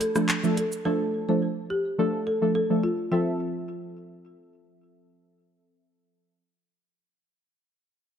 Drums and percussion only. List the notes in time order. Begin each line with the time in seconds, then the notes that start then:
0.01 closed hi-hat, shaker
0.16 cross-stick, shaker
0.29 clap, shaker
0.44 shaker
0.57 closed hi-hat, shaker
0.72 shaker